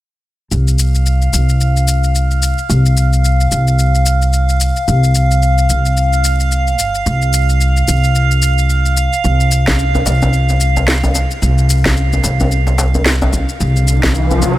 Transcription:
0.51 upright bass C2, synth texture F5, shaker
0.68 shaker
0.79 shaker
0.95 shaker
1.06 shaker
1.22 shaker
1.33 upright bass C2, shaker
1.49 shaker
1.61 shaker
1.77 shaker
1.88 shaker
2.04 shaker
2.15 shaker
2.31 shaker
2.43 shaker
2.58 shaker
2.69 upright bass C2, shaker
2.86 shaker
2.97 shaker
3.13 shaker
3.25 shaker
3.40 shaker
3.51 upright bass C2, shaker
3.68 shaker
3.79 shaker
3.95 shaker
4.06 shaker
4.22 shaker
4.33 shaker
4.49 shaker
4.61 shaker
4.76 shaker
4.88 upright bass C2, shaker
5.04 shaker
5.15 shaker
5.31 shaker
5.43 shaker
5.58 shaker
5.69 upright bass C2, shaker
5.86 shaker
5.97 shaker
6.13 shaker
6.24 shaker
6.40 shaker
6.52 shaker
6.67 shaker
6.79 upright bass G1, shaker
6.95 shaker
7.06 upright bass C2, shaker
7.22 shaker
7.33 shaker
7.49 shaker
7.61 shaker
7.77 shaker
7.88 upright bass C2, shaker
8.04 shaker
8.15 shaker
8.31 shaker
8.42 shaker
8.58 shaker
8.70 shaker
8.86 shaker
8.97 shaker
9.13 shaker
9.24 upright bass C2, shaker
9.40 shaker
9.52 shaker
9.67 snare, djembe bass, shaker
9.79 shaker
9.95 djembe tone, shaker
10.06 upright bass C2, djembe slap, shaker
10.22 djembe tone, shaker
10.33 shaker
10.49 djembe slap, shaker
10.60 shaker
10.76 djembe slap, djembe tone, shaker
10.88 snare, shaker
11.03 djembe tone, shaker
11.15 djembe slap, shaker
11.31 shaker
11.42 upright bass C2, shaker
11.58 shaker
11.70 shaker
11.85 snare, djembe bass, shaker
11.97 shaker
12.13 djembe tone, shaker
12.24 upright bass C2, djembe slap, shaker
12.40 djembe tone, shaker
12.52 shaker
12.67 djembe slap, shaker
12.78 djembe slap, shaker
12.94 djembe tone, shaker
13.06 snare, shaker
13.22 djembe slap, djembe tone, shaker
13.33 djembe slap, djembe bass, shaker
13.49 shaker
13.60 upright bass C2, riser, shaker
13.76 shaker
13.88 shaker
14.03 snare, djembe bass, shaker
14.15 shaker
14.31 djembe tone, shaker
14.42 upright bass C2, djembe slap, shaker

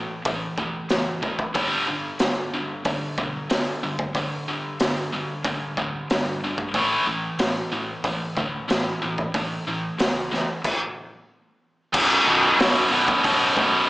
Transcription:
Already playing: distorted electric guitar A2 E3
0.25 fingered electric bass A1, distorted electric guitar A2 E3, kick, open hi-hat
0.58 fingered electric bass E1, distorted electric guitar A2 E3, kick
0.89 fingered electric bass F#1, distorted electric guitar A2 E3, snare, open hi-hat
1.22 distorted electric guitar A2 E3, kick
1.39 kick
1.54 fingered electric bass G1, distorted electric guitar G2 D3 G3, kick, open hi-hat
1.87 fingered electric bass G1, distorted electric guitar G2 D3
2.19 fingered electric bass G1, distorted electric guitar G2 D3, snare, open hi-hat
2.53 fingered electric bass G1, distorted electric guitar G2 D3
2.85 fingered electric bass G1, distorted electric guitar G2 D3, kick, open hi-hat
3.18 fingered electric bass B1, distorted electric guitar G2 D3, kick
3.50 fingered electric bass G1, distorted electric guitar G2 D3, snare, open hi-hat
3.83 fingered electric bass G1, distorted electric guitar G2 D3
3.99 kick
4.14 fingered electric bass G1, distorted electric guitar G2 D3, kick, open hi-hat
4.48 fingered electric bass G1, distorted electric guitar G2 D3
4.80 fingered electric bass G1, distorted electric guitar G2 D3, snare, open hi-hat
5.13 distorted electric guitar G2 D3
5.44 fingered electric bass G1, distorted electric guitar G2 D3, kick, open hi-hat
5.77 fingered electric bass D1, distorted electric guitar G2 D3, kick
6.10 distorted electric guitar G2 D3, fingered electric bass G2, snare, open hi-hat
6.44 distorted electric guitar G2 D3
6.58 kick
6.74 fingered electric bass A1, distorted electric guitar A2 E3 A3, kick, open hi-hat
7.07 fingered electric bass A1, distorted electric guitar A2 E3
7.38 fingered electric bass A1, distorted electric guitar A2 E3, snare, open hi-hat
7.72 fingered electric bass A1, distorted electric guitar A2 E3
8.04 fingered electric bass A1, distorted electric guitar A2 E3, kick, open hi-hat
8.37 fingered electric bass D2, distorted electric guitar A2 E3, kick
8.68 fingered electric bass A1, distorted electric guitar A2 E3, snare, open hi-hat
9.02 fingered electric bass A1, distorted electric guitar A2 E3
9.18 kick
9.34 fingered electric bass A1, distorted electric guitar A2 E3, kick, open hi-hat
9.67 fingered electric bass A1, distorted electric guitar A2 E3
9.98 fingered electric bass C#2, distorted electric guitar A2 E3, snare, open hi-hat
10.31 distorted electric guitar A2 E3, snare
10.64 kick, crash
11.93 fingered electric bass B0, distorted electric guitar B1 F#2 B2, kick, crash
12.25 fingered electric bass B0, distorted electric guitar B1 F#2 B2
12.57 fingered electric bass B0, distorted electric guitar B1 F#2 B2, snare, open hi-hat
12.90 fingered electric bass B0, distorted electric guitar B1 F#2 B2
13.08 kick
13.23 fingered electric bass B0, distorted electric guitar B1 F#2 B2, kick, open hi-hat
13.56 distorted electric guitar B1 F#2 B2, kick

